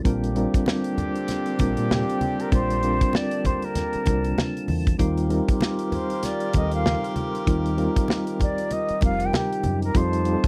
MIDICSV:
0, 0, Header, 1, 8, 480
1, 0, Start_track
1, 0, Key_signature, -2, "major"
1, 0, Tempo, 618557
1, 39, Time_signature, 4, 2, 24, 8
1, 8130, End_track
2, 0, Start_track
2, 0, Title_t, "Flute"
2, 0, Program_c, 0, 73
2, 1489, Note_on_c, 0, 67, 88
2, 1868, Note_on_c, 0, 70, 91
2, 1880, Note_off_c, 0, 67, 0
2, 1963, Note_off_c, 0, 70, 0
2, 1968, Note_on_c, 0, 72, 112
2, 2445, Note_on_c, 0, 74, 115
2, 2457, Note_off_c, 0, 72, 0
2, 2686, Note_on_c, 0, 72, 96
2, 2698, Note_off_c, 0, 74, 0
2, 2830, Note_on_c, 0, 70, 102
2, 2842, Note_off_c, 0, 72, 0
2, 3643, Note_off_c, 0, 70, 0
2, 4563, Note_on_c, 0, 71, 56
2, 4611, Note_on_c, 0, 72, 76
2, 4622, Note_off_c, 0, 71, 0
2, 4847, Note_on_c, 0, 74, 91
2, 4859, Note_off_c, 0, 72, 0
2, 5082, Note_off_c, 0, 74, 0
2, 5092, Note_on_c, 0, 75, 95
2, 5215, Note_off_c, 0, 75, 0
2, 5231, Note_on_c, 0, 77, 105
2, 5541, Note_off_c, 0, 77, 0
2, 6538, Note_on_c, 0, 74, 91
2, 6771, Note_on_c, 0, 75, 105
2, 6782, Note_off_c, 0, 74, 0
2, 7005, Note_off_c, 0, 75, 0
2, 7018, Note_on_c, 0, 77, 106
2, 7156, Note_on_c, 0, 79, 104
2, 7168, Note_off_c, 0, 77, 0
2, 7256, Note_on_c, 0, 67, 97
2, 7267, Note_off_c, 0, 79, 0
2, 7627, Note_off_c, 0, 67, 0
2, 7637, Note_on_c, 0, 70, 99
2, 7735, Note_on_c, 0, 72, 104
2, 7747, Note_off_c, 0, 70, 0
2, 8130, Note_off_c, 0, 72, 0
2, 8130, End_track
3, 0, Start_track
3, 0, Title_t, "Horn section"
3, 0, Program_c, 1, 61
3, 39, Note_on_c, 1, 62, 82
3, 42, Note_on_c, 1, 60, 79
3, 42, Note_on_c, 1, 67, 87
3, 3606, Note_off_c, 1, 62, 0
3, 3607, Note_off_c, 1, 60, 0
3, 3607, Note_off_c, 1, 67, 0
3, 3876, Note_on_c, 1, 65, 80
3, 3876, Note_on_c, 1, 67, 87
3, 3877, Note_on_c, 1, 70, 86
3, 7448, Note_off_c, 1, 65, 0
3, 7448, Note_off_c, 1, 67, 0
3, 7448, Note_off_c, 1, 70, 0
3, 7717, Note_on_c, 1, 63, 85
3, 7718, Note_on_c, 1, 81, 91
3, 7719, Note_on_c, 1, 60, 81
3, 8130, Note_off_c, 1, 60, 0
3, 8130, Note_off_c, 1, 63, 0
3, 8130, Note_off_c, 1, 81, 0
3, 8130, End_track
4, 0, Start_track
4, 0, Title_t, "Reed electric piano"
4, 0, Program_c, 2, 4
4, 0, Control_c, 2, 64, 127
4, 32, Note_on_c, 2, 55, 88
4, 35, Note_on_c, 2, 60, 81
4, 40, Note_on_c, 2, 62, 84
4, 40, Note_on_c, 2, 65, 78
4, 43, Note_on_c, 2, 70, 98
4, 49, Control_c, 2, 64, 0
4, 181, Control_c, 2, 64, 127
4, 259, Note_off_c, 2, 55, 0
4, 261, Note_off_c, 2, 60, 0
4, 263, Note_off_c, 2, 62, 0
4, 263, Note_off_c, 2, 65, 0
4, 265, Note_off_c, 2, 70, 0
4, 274, Note_on_c, 2, 55, 87
4, 276, Note_on_c, 2, 60, 84
4, 280, Note_on_c, 2, 62, 80
4, 283, Note_on_c, 2, 65, 84
4, 287, Note_on_c, 2, 70, 93
4, 1171, Note_off_c, 2, 55, 0
4, 1173, Note_off_c, 2, 60, 0
4, 1174, Note_off_c, 2, 62, 0
4, 1176, Note_off_c, 2, 65, 0
4, 1178, Note_off_c, 2, 70, 0
4, 1231, Note_on_c, 2, 55, 84
4, 1234, Note_on_c, 2, 60, 75
4, 1237, Note_on_c, 2, 62, 78
4, 1242, Note_on_c, 2, 65, 75
4, 1244, Note_on_c, 2, 70, 89
4, 1906, Note_off_c, 2, 55, 0
4, 1908, Note_off_c, 2, 60, 0
4, 1909, Note_off_c, 2, 62, 0
4, 1911, Note_off_c, 2, 65, 0
4, 1913, Note_off_c, 2, 70, 0
4, 1949, Note_on_c, 2, 55, 76
4, 1951, Note_on_c, 2, 60, 67
4, 1954, Note_on_c, 2, 62, 62
4, 1958, Note_on_c, 2, 65, 66
4, 1961, Note_on_c, 2, 70, 78
4, 2177, Note_off_c, 2, 55, 0
4, 2178, Note_off_c, 2, 60, 0
4, 2180, Note_off_c, 2, 62, 0
4, 2181, Note_off_c, 2, 65, 0
4, 2183, Note_off_c, 2, 70, 0
4, 2190, Note_on_c, 2, 55, 69
4, 2193, Note_on_c, 2, 60, 66
4, 2198, Note_on_c, 2, 62, 63
4, 2201, Note_on_c, 2, 65, 67
4, 2204, Note_on_c, 2, 70, 81
4, 3089, Note_off_c, 2, 55, 0
4, 3090, Note_off_c, 2, 60, 0
4, 3093, Note_off_c, 2, 62, 0
4, 3094, Note_off_c, 2, 65, 0
4, 3096, Note_off_c, 2, 70, 0
4, 3147, Note_on_c, 2, 55, 65
4, 3150, Note_on_c, 2, 60, 61
4, 3152, Note_on_c, 2, 62, 65
4, 3155, Note_on_c, 2, 65, 67
4, 3159, Note_on_c, 2, 70, 76
4, 3824, Note_off_c, 2, 55, 0
4, 3825, Note_off_c, 2, 60, 0
4, 3826, Note_off_c, 2, 62, 0
4, 3828, Note_off_c, 2, 65, 0
4, 3830, Note_off_c, 2, 70, 0
4, 3865, Note_on_c, 2, 55, 89
4, 3869, Note_on_c, 2, 60, 81
4, 3872, Note_on_c, 2, 63, 76
4, 3876, Note_on_c, 2, 65, 78
4, 3876, Note_on_c, 2, 70, 89
4, 3885, Control_c, 2, 64, 0
4, 4043, Control_c, 2, 64, 127
4, 4095, Note_off_c, 2, 55, 0
4, 4097, Note_off_c, 2, 60, 0
4, 4098, Note_off_c, 2, 63, 0
4, 4100, Note_off_c, 2, 65, 0
4, 4100, Note_off_c, 2, 70, 0
4, 4107, Note_on_c, 2, 55, 85
4, 4110, Note_on_c, 2, 60, 76
4, 4113, Note_on_c, 2, 63, 77
4, 4115, Note_on_c, 2, 65, 79
4, 4119, Note_on_c, 2, 70, 95
4, 5008, Note_off_c, 2, 55, 0
4, 5010, Note_off_c, 2, 60, 0
4, 5011, Note_off_c, 2, 63, 0
4, 5012, Note_off_c, 2, 65, 0
4, 5014, Note_off_c, 2, 70, 0
4, 5073, Note_on_c, 2, 55, 68
4, 5077, Note_on_c, 2, 60, 64
4, 5081, Note_on_c, 2, 63, 64
4, 5083, Note_on_c, 2, 65, 59
4, 5087, Note_on_c, 2, 69, 64
4, 5136, Note_on_c, 2, 70, 75
4, 5140, Note_off_c, 2, 69, 0
4, 5748, Note_off_c, 2, 55, 0
4, 5749, Note_off_c, 2, 60, 0
4, 5751, Note_off_c, 2, 63, 0
4, 5752, Note_off_c, 2, 65, 0
4, 5779, Note_off_c, 2, 70, 0
4, 5793, Note_on_c, 2, 55, 87
4, 5796, Note_on_c, 2, 60, 79
4, 5798, Note_on_c, 2, 63, 82
4, 5802, Note_on_c, 2, 65, 84
4, 5804, Note_on_c, 2, 70, 96
4, 6019, Note_off_c, 2, 55, 0
4, 6021, Note_off_c, 2, 60, 0
4, 6022, Note_off_c, 2, 63, 0
4, 6024, Note_off_c, 2, 65, 0
4, 6025, Note_off_c, 2, 70, 0
4, 6032, Note_on_c, 2, 55, 88
4, 6034, Note_on_c, 2, 60, 76
4, 6037, Note_on_c, 2, 63, 78
4, 6039, Note_on_c, 2, 65, 80
4, 6043, Note_on_c, 2, 70, 98
4, 6932, Note_off_c, 2, 55, 0
4, 6933, Note_off_c, 2, 60, 0
4, 6934, Note_off_c, 2, 63, 0
4, 6936, Note_off_c, 2, 65, 0
4, 6937, Note_off_c, 2, 70, 0
4, 6991, Note_on_c, 2, 55, 74
4, 6995, Note_on_c, 2, 60, 62
4, 6996, Note_on_c, 2, 63, 62
4, 7002, Note_on_c, 2, 65, 63
4, 7003, Note_on_c, 2, 70, 81
4, 7668, Note_off_c, 2, 55, 0
4, 7670, Note_off_c, 2, 60, 0
4, 7670, Note_off_c, 2, 63, 0
4, 7673, Note_off_c, 2, 65, 0
4, 7674, Note_off_c, 2, 70, 0
4, 7713, Note_on_c, 2, 55, 72
4, 7715, Note_on_c, 2, 60, 66
4, 7720, Note_on_c, 2, 63, 66
4, 7722, Note_on_c, 2, 65, 72
4, 7726, Note_on_c, 2, 69, 82
4, 7728, Control_c, 2, 64, 0
4, 7874, Control_c, 2, 64, 127
4, 7941, Note_off_c, 2, 55, 0
4, 7941, Note_off_c, 2, 60, 0
4, 7944, Note_off_c, 2, 63, 0
4, 7945, Note_off_c, 2, 65, 0
4, 7947, Note_off_c, 2, 69, 0
4, 7953, Note_on_c, 2, 55, 73
4, 7957, Note_on_c, 2, 60, 65
4, 7961, Note_on_c, 2, 63, 65
4, 7963, Note_on_c, 2, 65, 71
4, 7967, Note_on_c, 2, 67, 64
4, 8016, Note_on_c, 2, 69, 85
4, 8022, Note_off_c, 2, 67, 0
4, 8130, Note_off_c, 2, 55, 0
4, 8130, Note_off_c, 2, 60, 0
4, 8130, Note_off_c, 2, 63, 0
4, 8130, Note_off_c, 2, 65, 0
4, 8130, Note_off_c, 2, 69, 0
4, 8130, End_track
5, 0, Start_track
5, 0, Title_t, "Tonewheel organ"
5, 0, Program_c, 3, 16
5, 37, Note_on_c, 3, 58, 68
5, 37, Note_on_c, 3, 60, 69
5, 37, Note_on_c, 3, 67, 84
5, 39, Note_on_c, 3, 50, 78
5, 1937, Note_off_c, 3, 67, 0
5, 1957, Note_on_c, 3, 81, 80
5, 3844, Note_off_c, 3, 58, 0
5, 3844, Note_off_c, 3, 60, 0
5, 3845, Note_off_c, 3, 50, 0
5, 3857, Note_off_c, 3, 81, 0
5, 3873, Note_on_c, 3, 67, 64
5, 3874, Note_on_c, 3, 60, 68
5, 3875, Note_on_c, 3, 51, 74
5, 3876, Note_on_c, 3, 65, 76
5, 5778, Note_off_c, 3, 65, 0
5, 5800, Note_on_c, 3, 63, 81
5, 7688, Note_off_c, 3, 60, 0
5, 7702, Note_off_c, 3, 63, 0
5, 7724, Note_on_c, 3, 55, 64
5, 7726, Note_on_c, 3, 65, 81
5, 8130, Note_off_c, 3, 51, 0
5, 8130, Note_off_c, 3, 55, 0
5, 8130, Note_off_c, 3, 65, 0
5, 8130, Note_off_c, 3, 67, 0
5, 8130, End_track
6, 0, Start_track
6, 0, Title_t, "Fingered electric bass"
6, 0, Program_c, 4, 33
6, 44, Note_on_c, 4, 34, 103
6, 350, Note_off_c, 4, 34, 0
6, 1242, Note_on_c, 4, 34, 98
6, 1353, Note_off_c, 4, 34, 0
6, 1382, Note_on_c, 4, 46, 99
6, 1575, Note_off_c, 4, 46, 0
6, 1961, Note_on_c, 4, 34, 96
6, 2350, Note_off_c, 4, 34, 0
6, 3161, Note_on_c, 4, 36, 86
6, 3355, Note_off_c, 4, 36, 0
6, 3643, Note_on_c, 4, 40, 82
6, 3835, Note_off_c, 4, 40, 0
6, 3878, Note_on_c, 4, 39, 100
6, 4186, Note_off_c, 4, 39, 0
6, 5082, Note_on_c, 4, 39, 86
6, 5389, Note_off_c, 4, 39, 0
6, 5801, Note_on_c, 4, 39, 106
6, 6109, Note_off_c, 4, 39, 0
6, 7007, Note_on_c, 4, 29, 90
6, 7199, Note_off_c, 4, 29, 0
6, 7490, Note_on_c, 4, 42, 95
6, 7681, Note_off_c, 4, 42, 0
6, 7722, Note_on_c, 4, 41, 123
6, 8030, Note_off_c, 4, 41, 0
6, 8130, End_track
7, 0, Start_track
7, 0, Title_t, "Muted fingered electric bass strokes"
7, 424, Note_on_c, 9, 29, 50
7, 502, Note_off_c, 9, 29, 0
7, 3066, Note_on_c, 9, 29, 43
7, 3143, Note_off_c, 9, 29, 0
7, 4260, Note_on_c, 9, 29, 47
7, 4337, Note_off_c, 9, 29, 0
7, 6908, Note_on_c, 9, 29, 48
7, 6986, Note_off_c, 9, 29, 0
7, 8104, Note_on_c, 9, 29, 51
7, 8130, Note_off_c, 9, 29, 0
7, 8130, End_track
8, 0, Start_track
8, 0, Title_t, "Drums"
8, 39, Note_on_c, 9, 36, 102
8, 43, Note_on_c, 9, 42, 71
8, 117, Note_off_c, 9, 36, 0
8, 120, Note_off_c, 9, 42, 0
8, 184, Note_on_c, 9, 42, 56
8, 261, Note_off_c, 9, 42, 0
8, 279, Note_on_c, 9, 42, 74
8, 356, Note_off_c, 9, 42, 0
8, 420, Note_on_c, 9, 36, 94
8, 423, Note_on_c, 9, 42, 57
8, 498, Note_off_c, 9, 36, 0
8, 501, Note_off_c, 9, 42, 0
8, 514, Note_on_c, 9, 63, 68
8, 526, Note_on_c, 9, 38, 117
8, 591, Note_off_c, 9, 63, 0
8, 604, Note_off_c, 9, 38, 0
8, 654, Note_on_c, 9, 42, 59
8, 732, Note_off_c, 9, 42, 0
8, 758, Note_on_c, 9, 64, 75
8, 761, Note_on_c, 9, 42, 79
8, 836, Note_off_c, 9, 64, 0
8, 839, Note_off_c, 9, 42, 0
8, 897, Note_on_c, 9, 42, 52
8, 974, Note_off_c, 9, 42, 0
8, 993, Note_on_c, 9, 42, 85
8, 999, Note_on_c, 9, 62, 53
8, 1003, Note_on_c, 9, 38, 39
8, 1071, Note_off_c, 9, 42, 0
8, 1077, Note_off_c, 9, 62, 0
8, 1080, Note_off_c, 9, 38, 0
8, 1131, Note_on_c, 9, 42, 49
8, 1209, Note_off_c, 9, 42, 0
8, 1233, Note_on_c, 9, 62, 57
8, 1234, Note_on_c, 9, 42, 79
8, 1239, Note_on_c, 9, 36, 94
8, 1311, Note_off_c, 9, 62, 0
8, 1312, Note_off_c, 9, 42, 0
8, 1317, Note_off_c, 9, 36, 0
8, 1374, Note_on_c, 9, 42, 57
8, 1451, Note_off_c, 9, 42, 0
8, 1482, Note_on_c, 9, 63, 80
8, 1484, Note_on_c, 9, 38, 121
8, 1560, Note_off_c, 9, 63, 0
8, 1561, Note_off_c, 9, 38, 0
8, 1626, Note_on_c, 9, 42, 52
8, 1704, Note_off_c, 9, 42, 0
8, 1715, Note_on_c, 9, 63, 74
8, 1716, Note_on_c, 9, 42, 67
8, 1792, Note_off_c, 9, 63, 0
8, 1793, Note_off_c, 9, 42, 0
8, 1860, Note_on_c, 9, 42, 54
8, 1937, Note_off_c, 9, 42, 0
8, 1954, Note_on_c, 9, 62, 30
8, 1957, Note_on_c, 9, 36, 109
8, 1959, Note_on_c, 9, 42, 70
8, 2031, Note_off_c, 9, 62, 0
8, 2034, Note_off_c, 9, 36, 0
8, 2037, Note_off_c, 9, 42, 0
8, 2099, Note_on_c, 9, 42, 58
8, 2176, Note_off_c, 9, 42, 0
8, 2195, Note_on_c, 9, 42, 65
8, 2272, Note_off_c, 9, 42, 0
8, 2337, Note_on_c, 9, 36, 96
8, 2338, Note_on_c, 9, 42, 54
8, 2414, Note_off_c, 9, 36, 0
8, 2415, Note_off_c, 9, 42, 0
8, 2429, Note_on_c, 9, 63, 64
8, 2443, Note_on_c, 9, 38, 106
8, 2507, Note_off_c, 9, 63, 0
8, 2521, Note_off_c, 9, 38, 0
8, 2570, Note_on_c, 9, 42, 58
8, 2648, Note_off_c, 9, 42, 0
8, 2674, Note_on_c, 9, 64, 72
8, 2676, Note_on_c, 9, 42, 76
8, 2679, Note_on_c, 9, 36, 78
8, 2751, Note_off_c, 9, 64, 0
8, 2754, Note_off_c, 9, 42, 0
8, 2757, Note_off_c, 9, 36, 0
8, 2812, Note_on_c, 9, 42, 51
8, 2890, Note_off_c, 9, 42, 0
8, 2913, Note_on_c, 9, 42, 88
8, 2914, Note_on_c, 9, 62, 49
8, 2914, Note_on_c, 9, 64, 73
8, 2923, Note_on_c, 9, 38, 35
8, 2991, Note_off_c, 9, 42, 0
8, 2992, Note_off_c, 9, 62, 0
8, 2992, Note_off_c, 9, 64, 0
8, 3001, Note_off_c, 9, 38, 0
8, 3050, Note_on_c, 9, 42, 52
8, 3127, Note_off_c, 9, 42, 0
8, 3148, Note_on_c, 9, 62, 55
8, 3152, Note_on_c, 9, 42, 74
8, 3158, Note_on_c, 9, 36, 92
8, 3225, Note_off_c, 9, 62, 0
8, 3230, Note_off_c, 9, 42, 0
8, 3235, Note_off_c, 9, 36, 0
8, 3294, Note_on_c, 9, 42, 59
8, 3371, Note_off_c, 9, 42, 0
8, 3397, Note_on_c, 9, 63, 76
8, 3402, Note_on_c, 9, 38, 125
8, 3475, Note_off_c, 9, 63, 0
8, 3479, Note_off_c, 9, 38, 0
8, 3545, Note_on_c, 9, 42, 51
8, 3623, Note_off_c, 9, 42, 0
8, 3631, Note_on_c, 9, 63, 71
8, 3633, Note_on_c, 9, 46, 68
8, 3709, Note_off_c, 9, 63, 0
8, 3711, Note_off_c, 9, 46, 0
8, 3778, Note_on_c, 9, 36, 96
8, 3778, Note_on_c, 9, 42, 53
8, 3855, Note_off_c, 9, 42, 0
8, 3856, Note_off_c, 9, 36, 0
8, 3872, Note_on_c, 9, 62, 30
8, 3875, Note_on_c, 9, 36, 100
8, 3878, Note_on_c, 9, 42, 70
8, 3949, Note_off_c, 9, 62, 0
8, 3953, Note_off_c, 9, 36, 0
8, 3955, Note_off_c, 9, 42, 0
8, 4016, Note_on_c, 9, 42, 58
8, 4094, Note_off_c, 9, 42, 0
8, 4116, Note_on_c, 9, 42, 69
8, 4193, Note_off_c, 9, 42, 0
8, 4256, Note_on_c, 9, 42, 60
8, 4257, Note_on_c, 9, 36, 97
8, 4333, Note_off_c, 9, 42, 0
8, 4334, Note_off_c, 9, 36, 0
8, 4350, Note_on_c, 9, 63, 67
8, 4362, Note_on_c, 9, 38, 105
8, 4428, Note_off_c, 9, 63, 0
8, 4440, Note_off_c, 9, 38, 0
8, 4492, Note_on_c, 9, 42, 58
8, 4569, Note_off_c, 9, 42, 0
8, 4594, Note_on_c, 9, 64, 73
8, 4596, Note_on_c, 9, 42, 70
8, 4672, Note_off_c, 9, 64, 0
8, 4673, Note_off_c, 9, 42, 0
8, 4734, Note_on_c, 9, 42, 55
8, 4811, Note_off_c, 9, 42, 0
8, 4833, Note_on_c, 9, 42, 86
8, 4837, Note_on_c, 9, 62, 50
8, 4842, Note_on_c, 9, 38, 38
8, 4910, Note_off_c, 9, 42, 0
8, 4914, Note_off_c, 9, 62, 0
8, 4920, Note_off_c, 9, 38, 0
8, 4969, Note_on_c, 9, 42, 49
8, 5046, Note_off_c, 9, 42, 0
8, 5070, Note_on_c, 9, 42, 79
8, 5072, Note_on_c, 9, 62, 58
8, 5078, Note_on_c, 9, 36, 100
8, 5148, Note_off_c, 9, 42, 0
8, 5149, Note_off_c, 9, 62, 0
8, 5155, Note_off_c, 9, 36, 0
8, 5211, Note_on_c, 9, 42, 64
8, 5288, Note_off_c, 9, 42, 0
8, 5321, Note_on_c, 9, 63, 78
8, 5322, Note_on_c, 9, 38, 122
8, 5399, Note_off_c, 9, 63, 0
8, 5400, Note_off_c, 9, 38, 0
8, 5466, Note_on_c, 9, 42, 54
8, 5544, Note_off_c, 9, 42, 0
8, 5555, Note_on_c, 9, 42, 65
8, 5555, Note_on_c, 9, 63, 73
8, 5633, Note_off_c, 9, 42, 0
8, 5633, Note_off_c, 9, 63, 0
8, 5703, Note_on_c, 9, 42, 56
8, 5780, Note_off_c, 9, 42, 0
8, 5798, Note_on_c, 9, 36, 104
8, 5800, Note_on_c, 9, 42, 75
8, 5876, Note_off_c, 9, 36, 0
8, 5878, Note_off_c, 9, 42, 0
8, 5942, Note_on_c, 9, 42, 59
8, 6020, Note_off_c, 9, 42, 0
8, 6038, Note_on_c, 9, 42, 70
8, 6115, Note_off_c, 9, 42, 0
8, 6180, Note_on_c, 9, 36, 95
8, 6180, Note_on_c, 9, 42, 62
8, 6257, Note_off_c, 9, 36, 0
8, 6258, Note_off_c, 9, 42, 0
8, 6271, Note_on_c, 9, 63, 64
8, 6287, Note_on_c, 9, 38, 115
8, 6349, Note_off_c, 9, 63, 0
8, 6365, Note_off_c, 9, 38, 0
8, 6418, Note_on_c, 9, 42, 58
8, 6495, Note_off_c, 9, 42, 0
8, 6516, Note_on_c, 9, 64, 73
8, 6523, Note_on_c, 9, 36, 83
8, 6523, Note_on_c, 9, 42, 72
8, 6593, Note_off_c, 9, 64, 0
8, 6600, Note_off_c, 9, 42, 0
8, 6601, Note_off_c, 9, 36, 0
8, 6659, Note_on_c, 9, 42, 52
8, 6737, Note_off_c, 9, 42, 0
8, 6756, Note_on_c, 9, 42, 80
8, 6760, Note_on_c, 9, 62, 51
8, 6833, Note_off_c, 9, 42, 0
8, 6837, Note_off_c, 9, 62, 0
8, 6895, Note_on_c, 9, 42, 52
8, 6973, Note_off_c, 9, 42, 0
8, 6991, Note_on_c, 9, 62, 58
8, 6997, Note_on_c, 9, 42, 77
8, 7001, Note_on_c, 9, 36, 99
8, 7069, Note_off_c, 9, 62, 0
8, 7075, Note_off_c, 9, 42, 0
8, 7079, Note_off_c, 9, 36, 0
8, 7138, Note_on_c, 9, 42, 61
8, 7216, Note_off_c, 9, 42, 0
8, 7242, Note_on_c, 9, 63, 81
8, 7248, Note_on_c, 9, 38, 119
8, 7319, Note_off_c, 9, 63, 0
8, 7325, Note_off_c, 9, 38, 0
8, 7392, Note_on_c, 9, 42, 54
8, 7469, Note_off_c, 9, 42, 0
8, 7476, Note_on_c, 9, 63, 80
8, 7479, Note_on_c, 9, 42, 69
8, 7554, Note_off_c, 9, 63, 0
8, 7556, Note_off_c, 9, 42, 0
8, 7623, Note_on_c, 9, 42, 53
8, 7701, Note_off_c, 9, 42, 0
8, 7717, Note_on_c, 9, 62, 31
8, 7718, Note_on_c, 9, 36, 104
8, 7721, Note_on_c, 9, 42, 73
8, 7795, Note_off_c, 9, 62, 0
8, 7796, Note_off_c, 9, 36, 0
8, 7798, Note_off_c, 9, 42, 0
8, 7862, Note_on_c, 9, 42, 56
8, 7940, Note_off_c, 9, 42, 0
8, 7956, Note_on_c, 9, 42, 71
8, 8033, Note_off_c, 9, 42, 0
8, 8100, Note_on_c, 9, 36, 101
8, 8100, Note_on_c, 9, 42, 59
8, 8130, Note_off_c, 9, 36, 0
8, 8130, Note_off_c, 9, 42, 0
8, 8130, End_track
0, 0, End_of_file